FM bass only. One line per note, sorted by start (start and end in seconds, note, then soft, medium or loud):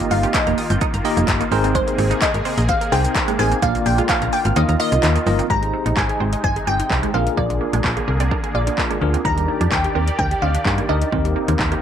0.11 0.26 G1 loud
0.47 0.54 F1 medium
0.70 0.77 G1 loud
0.94 1.01 G1 medium
1.17 1.24 F1 loud
1.28 1.43 G1 loud
1.52 1.81 G#1 loud
1.98 2.13 G#1 loud
2.34 2.41 G#1 loud
2.58 2.72 A#1 medium
2.92 3.07 C2 loud
3.39 3.54 A1 medium
3.62 3.77 A#1 loud
3.86 4.01 A#1 loud
4.22 4.29 A#1 medium
4.45 4.52 G#1 medium
4.56 4.64 D#2 loud
4.69 4.76 D#2 medium
4.92 4.99 C2 loud
5.03 5.18 D#2 loud
5.27 5.41 G1 loud
5.50 5.72 G#1 loud
5.86 5.93 A#1 medium
5.97 6.11 G#1 loud
6.20 6.35 G#1 medium
6.44 6.59 G1 loud
6.67 6.82 G1 medium
6.90 7.05 C2 medium
7.14 7.29 A#1 medium
7.38 7.60 A#1 loud
7.73 7.80 A#1 medium
7.84 7.99 A#1 loud
8.08 8.30 C2 loud
8.55 8.69 A#1 medium
9.02 9.16 D2 medium
9.25 9.47 D#2 loud
9.61 9.68 F2 medium
9.72 9.86 D#2 medium
9.95 10.10 D#2 medium
10.19 10.34 D2 loud
10.42 10.57 D2 medium
10.65 10.80 G2 loud
10.89 11.04 D2 medium
11.12 11.35 D#2 medium
11.48 11.55 D#2 medium
11.59 11.74 D#2 medium